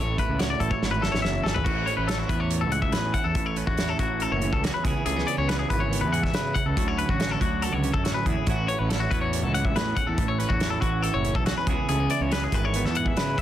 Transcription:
Already playing: A1 A2 C#4 A4 C#5
0.18 E4 B4, kick, closed hi-hat
0.29 C#2
0.39 F#4 C#5, snare, closed hi-hat
0.50 D5
0.60 A1 E3 A4, kick, closed hi-hat
0.70 C#5, kick
0.82 G#1 E4, snare
0.91 B4
1.02 E2 A4, snare
1.12 A1 C#5, snare
1.22 F#1 C#4 E5, snare
1.44 G#1 G#4 A4, snare
1.54 B4, floor tom
1.64 A1 A2 F#4, kick, crash
1.86 C#4 C#5, closed hi-hat
1.97 A1 B4
2.07 C#4 A4, snare, closed hi-hat
2.18 E4 F#4
2.28 E2 E3 E4 B4, kick, closed hi-hat
2.39 F#4 C#5
2.51 closed hi-hat
2.61 C#2 A4
2.72 C#4 F#5, closed hi-hat
2.82 E5, kick
2.92 E2 A2 G#4 B4, snare, closed hi-hat
3.14 E4 F#5, kick, closed hi-hat
3.24 E2 A4
3.35 A1 A2, kick, closed hi-hat
3.46 C#5
3.56 C#4 B4, closed hi-hat
3.67 E2 F#4, kick
3.77 E4, snare, closed hi-hat
3.89 A4
3.99 A1 E3 F#4, kick, closed hi-hat
4.20 A4, closed hi-hat
4.31 F#1 C#5
4.42 C#4, closed hi-hat
4.53 C#2 A4, kick
4.64 E2 F#4 G#4, snare, closed hi-hat
4.74 B4
4.84 C#2 C#3 E3 B3 E4 G#4, kick, closed hi-hat
5.06 C#2 A3 G#4, closed hi-hat
5.16 B3, snare
5.27 C#4 D5, closed hi-hat
5.37 C#2 E4 C#5
5.48 E3 G#4 B4, snare, closed hi-hat
5.59 G#4
5.70 G#1 B4, kick, closed hi-hat
5.80 C#5
5.91 B3, closed hi-hat
6.01 E2 B4
6.12 G#2 G#4 F#5, closed hi-hat
6.23 E5, kick, snare
6.34 C#3 E4 B4, snare, closed hi-hat
6.54 C#3 F#5, kick, closed hi-hat
6.65 C#2 A4
6.76 D2 D3 F#3 C#4 E4 F#4, kick, closed hi-hat
6.88 C#5
6.98 C#4 B4, closed hi-hat
7.09 A1 F#4, kick
7.19 C#4, snare, closed hi-hat
7.30 E4 A4
7.40 D2 F#3 F#4, kick, closed hi-hat
7.62 A4, closed hi-hat
7.72 C#2 C#5
7.83 C#4, closed hi-hat
7.93 F#2 A4, kick
8.04 A2 F#4 G#4, snare, closed hi-hat
8.14 B4
8.26 E2 E4 G#4, kick, closed hi-hat
8.47 A1 A2 E3 C#4 E4 F#4, kick, closed hi-hat
8.68 C#4 C#5, closed hi-hat
8.79 A1 B4
8.89 E4 A4, snare, closed hi-hat
9.00 F#4
9.11 E2 E3 F#4 B4, kick, closed hi-hat
9.21 C#5
9.33 closed hi-hat
9.43 C#2 A4
9.54 C#4 F#5, closed hi-hat
9.65 E5, kick
9.75 E2 A2 G#4 B4, snare, closed hi-hat
9.96 C#4 F#5, kick, closed hi-hat
10.07 E2 E4 A4
10.18 A1 A2, kick, closed hi-hat
10.28 C#5
10.39 C#4 B4, closed hi-hat
10.49 E2 F#4, kick
10.60 E4, snare, closed hi-hat
10.70 A4
10.81 A1 E3 F#4, kick, closed hi-hat
11.02 A4, closed hi-hat
11.14 F#1 C#5
11.25 C#4, closed hi-hat
11.35 B1 A4, kick
11.46 E2 F#4 G#4, snare, closed hi-hat
11.58 B4
11.67 C#2 C#3 E3 B3 E4 G#4, kick, closed hi-hat
11.89 C#2 A3 G#4, closed hi-hat
12.00 B3
12.10 E4 D5, closed hi-hat
12.21 C#2 C#5
12.31 E3 G#4 B4, snare, closed hi-hat
12.44 G#4
12.52 G#1 B4, kick, closed hi-hat
12.65 C#5
12.74 B3, closed hi-hat
12.84 E2 A4, snare
12.95 G#2 G#4 F#5, closed hi-hat
13.06 E5, kick
13.17 C#3 E4 B4, snare, closed hi-hat
13.38 E5, kick, closed hi-hat

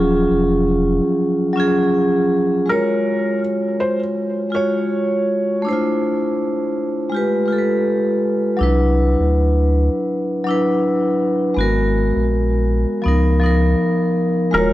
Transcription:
Already playing: D#1 F3 F#3 C#4 F4 G#4
0.30 F1
1.53 F#3 C#4
1.57 F4 G#4
2.66 G#3 F4 A#4
2.70 F#4 C#5
3.80 C5
4.50 G#3 F4 F#4
4.55 C#5
5.62 A3 D4
5.66 E4 C5
5.73 F4
7.10 G#3 F4
7.15 G4 B4
7.46 G#3 F4
7.50 G4 A4
7.58 B4
8.57 C2 F#3 D4
8.61 E4 B4
9.20 D2
10.44 F#3 D4
10.48 E4 B4
11.55 G#1 G#3 B3
11.59 F#4 A#4
12.16 A#1
13.02 C#2 F3 B3 D#4
13.08 A#4
13.39 F3 B3
13.44 D#4 A#4
14.51 D#1 G#3 F4 A#4
14.55 F#4 C#5

